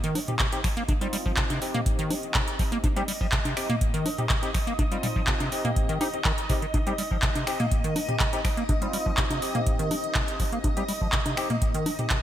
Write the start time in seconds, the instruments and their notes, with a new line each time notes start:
Already playing: string machine D#5
0.04 acid bass D#3, closed hi-hat
0.15 acid bass G3, open hi-hat, high conga
0.28 tine electric piano C4 D#4 G4, closed hi-hat, mid tom
0.39 acid bass C3, kick, clap, closed hi-hat
0.52 tine electric piano C4 D#4 G4, closed hi-hat
0.64 acid bass F3, finger snap, kick, open hi-hat
0.77 acid bass A#3, closed hi-hat
0.88 acid bass C3, kick, closed hi-hat, high conga
1.01 acid bass G3, tine electric piano C4 D#4 F4, closed hi-hat
1.13 acid bass G3, open hi-hat
1.26 acid bass F3, kick
1.37 acid bass C3, kick, clap, closed hi-hat
1.50 acid bass C3, closed hi-hat, high conga
1.62 tine electric piano C4 D#4 G4, open hi-hat
1.74 acid bass A#3, closed hi-hat, mid tom
1.86 kick, closed hi-hat
1.99 acid bass D#3, closed hi-hat
2.10 acid bass G3, open hi-hat, high conga
2.23 closed hi-hat
2.34 acid bass C3, kick, clap, closed hi-hat
2.48 closed hi-hat
2.59 acid bass F3, kick, open hi-hat
2.72 acid bass A#3, closed hi-hat
2.84 acid bass C3, kick, closed hi-hat, high conga
2.96 acid bass G3, tine electric piano C4 D#4 G4, closed hi-hat
3.08 acid bass G3, open hi-hat
3.21 acid bass F3, kick
3.32 acid bass C3, kick, clap, closed hi-hat
3.45 acid bass C3, closed hi-hat, high conga
3.57 tine electric piano C4 D#4 G4, finger snap, open hi-hat
3.70 acid bass A#3, closed hi-hat, mid tom
3.81 kick, closed hi-hat
3.94 acid bass D#3, closed hi-hat
4.06 acid bass G3, open hi-hat, high conga
4.18 tine electric piano C4 D#4 G4, closed hi-hat, mid tom
4.30 acid bass C3, kick, clap, closed hi-hat
4.43 tine electric piano C4 D#4 G4, closed hi-hat
4.54 acid bass F3, finger snap, kick, open hi-hat
4.67 acid bass A#3, closed hi-hat
4.79 acid bass C3, kick, closed hi-hat, high conga
4.92 acid bass G3, tine electric piano C4 D#4 F4, closed hi-hat
5.03 acid bass G3, mid tom, open hi-hat
5.16 acid bass F3, kick
5.27 acid bass C3, kick, clap, closed hi-hat
5.40 acid bass C3, closed hi-hat, high conga
5.52 tine electric piano C4 D#4 G4, open hi-hat
5.65 acid bass A#3, closed hi-hat, mid tom
5.76 kick, closed hi-hat
5.89 acid bass D#3, closed hi-hat
6.01 tine electric piano C4 D#4 G4, acid bass D#4, open hi-hat, high conga
6.14 tine electric piano C4 D#4 G4, closed hi-hat
6.25 acid bass D#3, kick, clap, closed hi-hat
6.38 closed hi-hat
6.50 acid bass C3, tine electric piano C4 D#4 G4, kick, open hi-hat
6.62 acid bass D#3, closed hi-hat
6.74 acid bass C3, kick, closed hi-hat, high conga
6.87 acid bass G3, tine electric piano C4 D#4 G4, closed hi-hat
6.98 acid bass G3, open hi-hat
7.11 acid bass F3, kick
7.22 acid bass C3, kick, clap, closed hi-hat
7.35 acid bass C3, closed hi-hat, high conga
7.47 tine electric piano C4 D#4 G4, finger snap, open hi-hat
7.60 acid bass A#3, closed hi-hat, mid tom
7.71 kick, closed hi-hat
7.84 acid bass D#3, closed hi-hat
7.96 acid bass G3, open hi-hat, high conga
8.09 tine electric piano C4 D#4 G4, closed hi-hat, mid tom
8.20 acid bass C3, kick, clap, closed hi-hat
8.33 tine electric piano C4 D#4 G4, closed hi-hat
8.45 acid bass F3, finger snap, kick, open hi-hat
8.57 acid bass A#3, closed hi-hat
8.69 acid bass C3, kick, closed hi-hat, high conga
8.82 acid bass G3, tine electric piano C4 D#4 F4, closed hi-hat
8.93 acid bass G3, open hi-hat
9.06 acid bass F3, kick
9.17 acid bass C3, kick, clap, closed hi-hat
9.31 acid bass C3, closed hi-hat, high conga
9.42 tine electric piano C4 D#4 G4, open hi-hat
9.55 acid bass A#3, closed hi-hat, mid tom
9.67 kick, closed hi-hat
9.79 acid bass D#3, closed hi-hat
9.91 acid bass G3, open hi-hat, high conga
10.04 closed hi-hat
10.15 acid bass C3, kick, clap, closed hi-hat
10.28 closed hi-hat
10.40 acid bass F3, kick, open hi-hat
10.52 acid bass A#3, closed hi-hat
10.64 acid bass C3, kick, closed hi-hat, high conga
10.77 acid bass G3, tine electric piano C4 D#4 G4, closed hi-hat
10.88 acid bass G3, open hi-hat
11.01 acid bass F3, kick
11.12 acid bass C3, kick, clap, closed hi-hat
11.26 acid bass C3, closed hi-hat, high conga
11.37 tine electric piano C4 D#4 G4, finger snap, open hi-hat
11.50 acid bass A#3, closed hi-hat, mid tom
11.62 kick, closed hi-hat
11.74 acid bass D#3, closed hi-hat
11.86 acid bass G3, open hi-hat, high conga
11.99 tine electric piano C4 D#4 G4, closed hi-hat, mid tom
12.10 acid bass C3, kick, clap, closed hi-hat